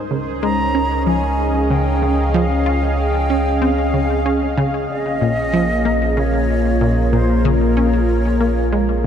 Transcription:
Already playing: sub bass C#2, analog synth pad C#4 D#4 A#4 C5, synth texture G#4
0.11 synth arpeggio sound C#3
0.15 analog synth pad D#5
0.43 synth arpeggio sound G#3, flute A#5
0.71 analog synth pad G#4
0.75 synth arpeggio sound C#4
0.84 analog synth pad F5
1.07 synth arpeggio sound F3, flute G#5
1.70 synth arpeggio sound C#3, flute G5
2.02 synth arpeggio sound C#3
2.34 synth arpeggio sound F3, flute F5
2.66 synth arpeggio sound F4
2.98 flute G5
3.30 synth arpeggio sound C#4
3.62 synth arpeggio sound C4, flute F5
3.94 synth arpeggio sound C#3
4.26 synth arpeggio sound C#4
4.57 synth arpeggio sound C#3
4.89 sub bass A#1, analog synth pad A#3, flute D#5
5.21 synth arpeggio sound A#2
5.53 synth arpeggio sound F3, analog synth pad F4
5.85 synth arpeggio sound A#3
6.17 synth arpeggio sound C#3, flute C#5
6.47 analog synth pad A#4
6.81 synth arpeggio sound A#2
7.13 synth arpeggio sound A#2, flute C5
7.45 synth arpeggio sound C#3, flute C#5
7.77 synth arpeggio sound C#4
8.41 synth arpeggio sound A#3
8.73 synth arpeggio sound G#3

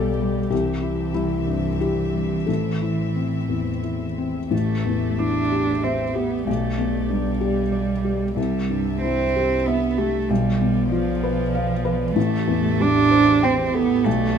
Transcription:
Already playing: felt piano B1 B2 G3 G4 A4 D5, double bass B1, cello G3, string section B3 G4 D5
0.20 felt piano G3
0.50 felt piano C2 G4, double bass C2, cello E3, string section C4 E5
0.82 felt piano E4
1.14 felt piano G3 E4
1.46 felt piano G2
1.80 felt piano E4 G4
2.13 felt piano G3
2.46 double bass A1, felt piano A1 A4, string section E4
2.82 felt piano E4
3.16 felt piano C4
3.49 felt piano E2
3.83 felt piano E4
4.18 felt piano C4
4.51 felt piano A1, double bass A1, cello A3, string section A3 G4 E5
4.85 felt piano E2
5.19 cello D4, felt piano E4
5.52 felt piano G4
5.83 cello C4, felt piano E5
6.15 cello B3, felt piano G4
6.46 felt piano B1, double bass B1, cello A3, string section B3 D5
6.78 felt piano B2
7.09 cello G3, felt piano D4
7.41 felt piano G4
7.72 felt piano D5
8.04 felt piano G4
8.35 felt piano C2, double bass C2, cello G3, string section G3 E4 E5
8.70 felt piano G2
9.02 cello C4, felt piano E4
9.36 felt piano G4
9.66 cello B3, felt piano E5
9.98 cello A3, felt piano G4
10.29 felt piano B1, double bass B1, cello G3, string section B3 F4 D5
10.61 felt piano B2
10.91 cello F3, felt piano F4
11.23 felt piano B4
11.55 felt piano F5
11.85 felt piano B4
12.15 felt piano A1, double bass A1, string section A3 G4 E5, cello A3
12.47 felt piano E2
12.80 cello D4, felt piano G4
13.11 felt piano C5
13.43 cello C4, felt piano G5
13.74 cello B3, felt piano A4
14.04 felt piano B1, double bass B1, cello A3, string section B3 D5

